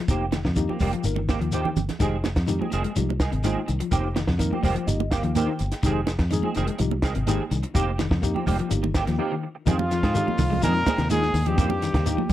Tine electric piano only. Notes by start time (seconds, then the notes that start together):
0.09 A#3 D#4 G4
0.56 A#3 D#4 G4
1.03 A#3 D#4 A#4
1.52 A#3 D#4 G4
1.99 G#3 D#4 G4
2.47 G#3 D#4 G4
2.96 G#3 D#4 G4
3.44 G#3 D#4 F4
3.91 A#3 D#4 G4
4.38 A#3 D#4 A#4
4.64 C5
4.86 A#3 D#4 G4 D#5
5.11 F5
5.35 A#3 D#4 A#4 G5
5.83 G#3 D#4 G4
6.31 G#3 D#4 G#4
6.78 G#3 D#4 G4
7.27 G#3 D#4 G4
7.74 A#3 D#4 G4
8.21 A#3 D#4 G4
8.69 A#3 D#4 G4
9.18 A#3 D#4 G4
9.66 G#3 D#4 G4
10.14 G#3 D#4 G4
10.62 G#3 D#4 F4
11.10 G#3 D#4 F4
11.57 A#3 D#4 G4
12.05 A#3 D#4 G4